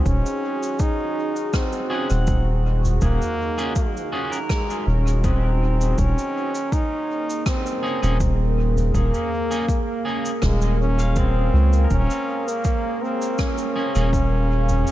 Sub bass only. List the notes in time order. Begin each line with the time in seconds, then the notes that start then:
0.06 D#1
2.10 D#1
3.02 D#1
4.87 D#1
5.98 D#1
8.03 D#1
8.94 D#1
10.43 D#1
11.53 C#2
11.91 D#1
13.96 D#1